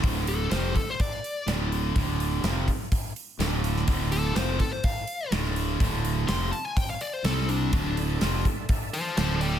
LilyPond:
<<
  \new Staff \with { instrumentName = "Lead electric guitar" } { \time 4/4 \key d \minor \tempo 4 = 125 r8 a'8 c''8 a'16 c''16 d''4 r4 | r1 | r8 a'8 c''8 a'16 c''16 f''4 r4 | r4 c'''8 a''16 gis''16 g''16 f''16 d''16 c''16 a'8 d'8~ |
d'8 r2 <c'' a''>8 <c'' a''>8 <d'' g''>8 | }
  \new Staff \with { instrumentName = "Tonewheel organ" } { \time 4/4 \key d \minor r1 | r1 | r1 | r1 |
<d' a' e''>1 | }
  \new Staff \with { instrumentName = "Distorted electric guitar" } { \clef bass \time 4/4 \key d \minor <d, a, d>4 <f, c f>8 r4. <d, a, d>4 | <d, a, d>4 <f, c f>8 r4. <d, a, d>4 | <d, a, d>4 <f, c f>8 r4. <d, a, d>4 | <d, a, d>4 <f, c f>8 r4. <c g c'>4 |
<d, a, d>4 <f, c f>8 r4. <d, a, d>4 | }
  \new Staff \with { instrumentName = "Overdriven electric guitar" } { \clef bass \time 4/4 \key d \minor <d, a, d>4 <f, c f>8 r4. <d, a, d>4 | <d, a, d>4 <f, c f>8 r4. <d, a, d>4 | <d, a, d>4 <f, c f>8 r4. <d, a, d>4 | <d, a, d>4 <f, c f>8 r4. <c g c'>4 |
<d, a, d>4 <f, c f>8 r4. <d, a, d>4 | }
  \new Staff \with { instrumentName = "Fingered electric bass" } { \clef bass \time 4/4 \key d \minor d,,4 f,,8 r4. d,,4 | d,,4 f,,8 r4. d,,4 | d,,4 f,,8 r4. d,,4 | d,,4 f,,8 r4. c,4 |
d,,4 f,,8 r4. d,,4 | }
  \new DrumStaff \with { instrumentName = "Drums" } \drummode { \time 4/4 <hho bd>8 hho8 <hho sn>8 <hho bd>8 <hho bd>8 hho8 <hho sn>8 hho8 | <hho bd>8 hho8 <hho sn>8 <hho bd>8 <hho bd>8 hho8 <hho sn>8 hho16 sn16 | <hho bd>8 hho8 <hho sn>8 <hho bd>8 <hho bd>8 hho8 <hho sn>16 sn16 hho8 | <hho bd>8 hho8 <hho sn>8 hho8 <hho bd>8 hho8 <hho sn>8 hho8 |
<hho bd>8 hho8 <hho sn>8 <hho bd>8 <hho bd>8 hho8 <hho sn>8 hho8 | }
>>